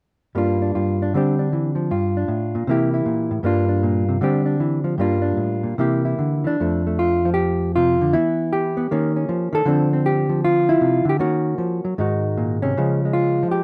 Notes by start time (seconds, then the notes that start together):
0.35 G2 G3 A#3 D4 F4
0.62 D4
0.75 G2 F4
1.02 D4
1.14 D3 G3 C4 D4 G4
1.39 D4
1.53 E3
1.75 F3
1.91 G2 F4
2.17 D4
2.28 A2
2.55 A#2
2.67 C3 E3 A#3 E4 G4
2.94 E4
3.06 A#2
3.31 A2
3.43 G2 G3 A#3 D4 F4
3.69 D4
3.83 A#2
4.09 C3
4.21 D3 G3 C4 D4 G4
4.46 D4
4.60 E3
4.84 F3
4.98 G2 G3 A#3 D4 F4
5.22 D4
5.37 A2
5.63 A#2
5.78 C3 E3 A#3 E4 G4
6.05 E4
6.19 D3
6.44 E3 D4
6.60 F2 F3 A3
6.87 A3
6.99 F4
7.25 F3
7.34 G4
7.76 C3 F4
8.01 D3
8.13 E3 B3 E4
8.53 G4
8.77 B3
8.91 D#3 A#3 C#4
9.16 C#4
9.29 F3
9.53 D#3 A4
9.65 D3 F3 C4 D4
9.93 C4
10.06 G4
10.29 F3
10.44 F4
10.69 E4
10.81 C3
11.05 D3
11.09 G4
11.19 D#3 A#3 C#4 F#4
11.58 F3
11.85 F#3
11.98 G#2 D#3 G#3 D#4 F#4
12.37 A#2
12.62 C3 C#4
12.77 C#3 F3 G#3
13.05 G#3
13.13 F4
13.43 F3
13.51 G4